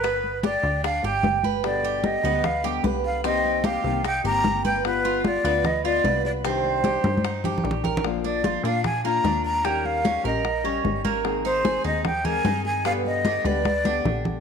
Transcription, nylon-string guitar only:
X:1
M:4/4
L:1/8
Q:1/4=150
K:Gphr
V:1 name="Nylon-string guitar"
z8 | [=B,,D,G,=B,G]2 [D,G,B,G] [D,G,B,G] z [D,G,B,G] [D,G,B,G]2 | [C,E,B,CG]2 [E,B,CG] [E,B,CG] z [E,B,CG] [E,B,CG]2 | [G,=B,F]2 [G,B,F] [B,F] z [B,F] [G,B,]2 |
[C,E,G,DG]2 [E,G,DG] [E,G,DG] z [E,G,DG] [E,G,DG]2 | [F,B,DF]2 [F,B,DF] [B,DF] z [B,DF] [F,B,DF]2 | [E,G,_DG]2 [E,G,DG] [G,DG] z [G,DG] [E,G,DG]2 | [E,A,CA]2 [E,A,CA] [A,CA] z [A,CA] [E,CA]2 |
[=B,,D,G,=B,G]2 [D,G,B,G] [D,G,B,G] z [D,G,B,G] [D,G,B,G]2 |]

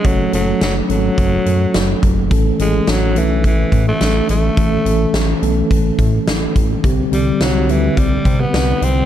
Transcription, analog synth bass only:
X:1
M:4/4
L:1/8
Q:1/4=106
K:F#m
V:1 name="Analog synth bass" clef=bass
F,,, F,,, F,,, G,,, F,,, F,, F,,, F,,, | A,,, A,,, A,,, B,,, A,,, A,, A,,, A,,, | A,,, A,,, A,,, B,,, A,,, A,, A,,, A,,, | =C,, C,, C,, D,, C,, =C, C,, C,, |]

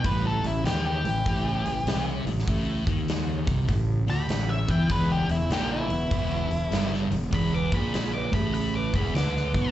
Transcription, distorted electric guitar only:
X:1
M:4/4
L:1/8
Q:"Swing" 1/4=99
K:A
V:1 name="Distorted electric guitar" clef=bass
A,, A,, ^D, A,, A,, A,, =C, A,, | A,, ^D,2 =C, A,, =D, A,, E, | E,, E,, ^A,, E,, E,, E,, =G,, E,, | E,, ^A,,2 =A,,2 E,, D, B,, |]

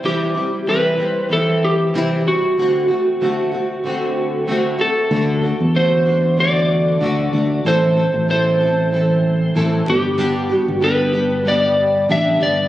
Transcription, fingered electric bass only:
X:1
M:4/4
L:1/16
Q:"Swing 16ths" 1/4=95
K:Dmix
V:1 name="Fingered electric bass" clef=bass
z16 | z16 | D,,3 E,,8- E,, D,,2 D,,2 | A,,,3 A,,,8- A,,, A,,,2 G,,,2- |
G,,,3 G,,,8- G,,, A,,,2 G,,,2 |]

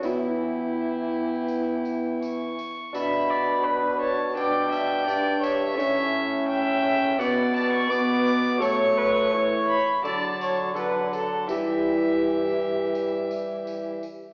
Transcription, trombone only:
X:1
M:4/4
L:1/8
Q:1/4=84
K:Edor
V:1 name="Trombone"
B,6- B, z | D4 D4 | C4 B,2 B,2 | A,3 z F,2 F,2 |
G,6- G, z |]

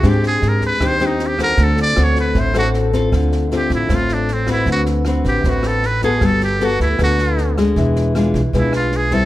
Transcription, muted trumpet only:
X:1
M:4/4
L:1/8
Q:1/4=155
K:Dphr
V:1 name="Muted trumpet"
G _A B =B c E G _B | A d ^c =B =c ^F z2 | [K:Gdor] z2 G E F D C E | ^F z2 G F A =B ^G |
A G ^F E F3 z | z4 E F ^G A |]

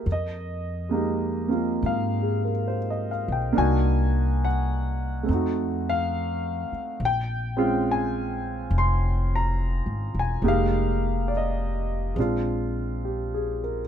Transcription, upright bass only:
X:1
M:4/4
L:1/8
Q:"Swing" 1/4=69
K:Fm
V:1 name="Upright bass" clef=bass
F,,4 A,,3 =B,,, | C,,4 F,,3 z | B,,,4 F,,,2- (3F,,, A,,, =E,,, | F,,,4 B,,,4 |]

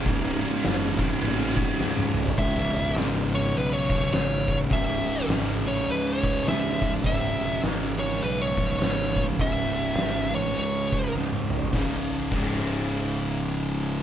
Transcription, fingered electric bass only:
X:1
M:4/4
L:1/8
Q:"Swing" 1/4=103
K:C#m
V:1 name="Fingered electric bass" clef=bass
C,,,2 F,,,2 A,,,2 C,, C,, | C,,, E,,, G,,,2 B,,,2 G,,, A,,, | C,,,2 G,,, A,,, C,,2 C,,2 | C,,, E,,, G,,,2 B,,,2 G,,, A,,, |
C,,,2 G,,, A,,, C,,2 C,,2 | C,,, z C,,,6 |]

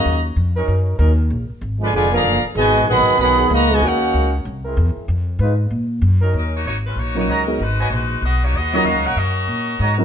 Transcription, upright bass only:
X:1
M:4/4
L:1/8
Q:"Swing" 1/4=191
K:Abdor
V:1 name="Upright bass" clef=bass
E,,2 F,,2 G,,2 E,,2 | B,,, z A,,,2 F,,,2 G,,, z | A,,,2 (3B,,, A,,, G,,, C,,2 D,,2 | E,,2 D,,2 =C,,2 =E,, z |
F,,2 A,,2 B,,2 G,,2 | E,,2 A,,,2 B,,,2 D,,2 | A,,,2 B,,,2 C,,2 E,,2 | (3E,, D,, B,,, G,,2 B,,2 A,,2 |]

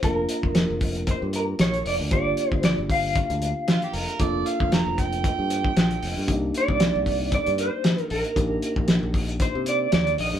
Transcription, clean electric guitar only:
X:1
M:4/4
L:1/8
Q:"Swing 16ths" 1/4=115
K:Gm
V:1 name="Clean electric guitar"
B3 z c B ^c d | d2 d f4- f- | f z6 z | z d3 d c2 B- |
B3 z c d d e |]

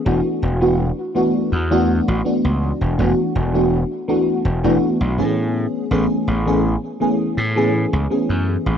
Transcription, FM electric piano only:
X:1
M:4/4
L:1/16
Q:1/4=82
K:Emix
V:1 name="FM electric piano"
[E,A,B,DF]3 [E,A,B,DF] z2 [E,A,B,DF]2 z [E,A,B,DF]2 z [E,A,B,DF]4 | [E,A,B,DF]3 [E,A,B,DF] z2 [E,A,B,DF]2 z [E,A,B,DF]2 z [E,A,B,CG]4 | [E,A,B,CG]3 [E,A,B,CG] z2 [E,A,B,CG]2 z [E,A,B,CG]2 z [E,A,B,CG]4 |]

